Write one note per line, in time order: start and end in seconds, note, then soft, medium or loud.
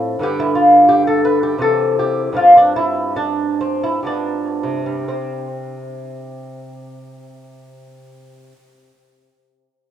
0.00 0.19 A2 medium
0.00 0.21 F3 medium
0.00 0.21 C4 medium
0.00 0.19 E4 loud
0.19 1.56 G2 medium
0.19 1.57 D3 medium
0.19 1.57 B3 medium
0.19 0.40 G4 loud
0.40 0.55 E4 medium
0.55 0.89 F4 medium
0.89 1.07 G4 loud
1.07 1.24 A4 medium
1.25 1.43 B4 loud
1.43 1.61 G4 medium
1.58 2.32 C3 medium
1.58 2.33 E3 soft
1.58 2.34 C4 medium
1.58 1.97 A4 loud
1.99 2.35 G4 medium
2.33 4.01 G2 medium
2.33 4.02 F3 soft
2.33 3.60 C4 soft
2.33 2.56 F4 medium
2.57 2.76 D4 medium
2.76 3.16 E4 medium
3.16 3.59 D4 medium
3.61 3.84 C4 medium
3.83 4.06 E4 medium
4.03 5.03 G2 medium
4.03 4.86 F3 soft
4.03 5.05 B3 soft
4.03 5.04 D4 medium
4.63 8.52 C3 medium
4.86 8.75 G3 soft
5.08 8.97 C4 medium